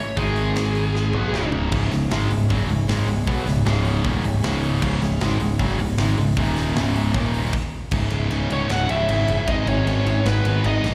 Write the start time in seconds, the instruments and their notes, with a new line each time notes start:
Already playing: string section E3 G#3 C#4 G#4 C#5, lead electric guitar C#5
0.17 picked electric bass G#1, distorted electric guitar G#2 D#3 G#3, string section D#3 G#3 D#4 G#5, lead electric guitar G#4, kick, open hi-hat
0.36 open hi-hat
0.56 snare, open hi-hat
0.75 open hi-hat
0.95 snare
1.13 picked electric bass B1, distorted electric guitar B2 F#3 B3, string section E3 C#4 C#5, mid tom
1.33 picked electric bass C#1, distorted electric guitar C#2 G#2 C#3, snare
1.52 floor tom
1.72 picked electric bass C#1, distorted electric guitar C#2 G#2 C#3, string section E3 G#3 C#4 G#4 C#5, kick, crash
1.91 picked electric bass C#1, distorted electric guitar C#2 G#2, snare, open hi-hat
2.11 picked electric bass G#1, distorted electric guitar G#2 D#3 G#3, snare, open hi-hat
2.30 picked electric bass C#1, distorted electric guitar C#2 G#2, open hi-hat
2.49 picked electric bass F#1, distorted electric guitar F#2 C#3 F#3, kick, open hi-hat
2.68 picked electric bass C#1, distorted electric guitar C#2 G#2, open hi-hat
2.88 picked electric bass G#1, distorted electric guitar G#2 D#3 G#3, snare, open hi-hat
3.06 picked electric bass C#1, distorted electric guitar C#2 G#2, open hi-hat
3.27 picked electric bass B1, distorted electric guitar B2 F#3 B3, kick
3.46 picked electric bass C#1, distorted electric guitar C#2 G#2, snare, open hi-hat
3.65 picked electric bass C#1, distorted electric guitar C#2 G#2 C#3, snare, open hi-hat
3.85 open hi-hat
4.03 picked electric bass D#1, distorted electric guitar D#2 A#2 D#3, kick, open hi-hat
4.23 picked electric bass C#1, distorted electric guitar C#2 G#2, open hi-hat
4.43 picked electric bass C#1, distorted electric guitar C#2 G#2 C#3, snare, open hi-hat
4.63 open hi-hat
4.81 picked electric bass C#1, distorted electric guitar C#2 G#2 C#3, kick, crash
5.01 picked electric bass C#1, distorted electric guitar C#2 G#2, snare, open hi-hat
5.21 picked electric bass G#1, distorted electric guitar G#2 D#3 G#3, snare, open hi-hat
5.40 picked electric bass C#1, distorted electric guitar C#2 G#2, open hi-hat
5.59 picked electric bass F#1, distorted electric guitar F#2 C#3 F#3, kick, open hi-hat
5.78 picked electric bass C#1, distorted electric guitar C#2 G#2, open hi-hat
5.98 picked electric bass G#1, distorted electric guitar G#2 D#3 G#3, snare, open hi-hat
6.17 picked electric bass C#1, distorted electric guitar C#2 G#2, open hi-hat
6.36 picked electric bass D#1, distorted electric guitar D#2 A#2 D#3, string section D#3 A#3 D#4 A#4 A#5, kick, open hi-hat
6.56 snare, open hi-hat
6.75 picked electric bass C#1, distorted electric guitar C#2 G#2 C#3, string section G#3 C#4 E4 C#5 E5, snare, open hi-hat
6.96 open hi-hat
7.14 picked electric bass D#1, distorted electric guitar D#2 A#2 D#3, string section D#3 A#3 D#4 A#4 A#5, kick, open hi-hat
7.34 open hi-hat
7.53 kick, crash
7.91 picked electric bass C#1, distorted electric guitar C#2 G#2 C#3, string section E3 G#3 C#4 G#4 C#5, kick, crash
8.10 picked electric bass C#1, distorted electric guitar C#2 G#2 C#3, ride
8.30 picked electric bass C#1, distorted electric guitar C#2 G#2 C#3, ride
8.50 picked electric bass C#1, distorted electric guitar C#2 G#2 C#3, lead electric guitar C#4 C#5, ride
8.69 picked electric bass C#1, distorted electric guitar C#2 G#2 C#3, lead electric guitar F#4 F#5, snare, ride
8.89 picked electric bass C#1, distorted electric guitar C#2 G#2 C#3, lead electric guitar E4 E5, ride
9.09 picked electric bass G#1, distorted electric guitar C#2 G#2 C#3, ride
9.28 picked electric bass F#1, distorted electric guitar C#2 G#2 C#3, ride
9.46 picked electric bass G#1, distorted electric guitar G#2 D#3 G#3, string section D#3 B3 B4, lead electric guitar D#4 D#5, kick, ride
9.66 picked electric bass G#1, distorted electric guitar G#2 D#3 G#3, lead electric guitar C#4 C#5, ride
9.86 picked electric bass G#1, distorted electric guitar G#2 D#3 G#3, ride
10.05 picked electric bass G#1, distorted electric guitar G#2 D#3 G#3, ride
10.25 picked electric bass G#1, distorted electric guitar G#2 D#3 G#3, lead electric guitar B3 B4, snare, ride
10.44 picked electric bass G#1, distorted electric guitar G#2 D#3 G#3, ride
10.64 picked electric bass G#1, distorted electric guitar G#2 D#3 G#3, lead electric guitar D#4 D#5, ride
10.83 picked electric bass A#1, distorted electric guitar G#2 D#3 G#3, snare, ride